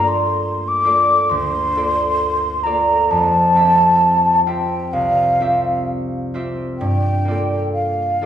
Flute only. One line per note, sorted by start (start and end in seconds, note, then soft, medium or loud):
0.07 0.69 C6 medium
0.68 1.31 D6 medium
1.29 2.65 C6 medium
2.63 3.11 A#5 medium
3.10 4.45 A5 medium
4.45 4.94 G5 medium
4.93 5.86 F5 medium
6.78 7.69 G5 medium
7.73 8.26 F5 medium